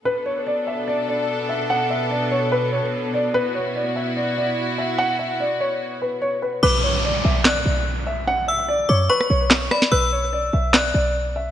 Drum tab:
CP |----------------|----------------|----------------|----------------|
SD |----------------|----------------|----------------|----------------|

CP |--------x-------|------------x---|--------x-------|
SD |--------o-------|---------r--o-ro|--------o-------|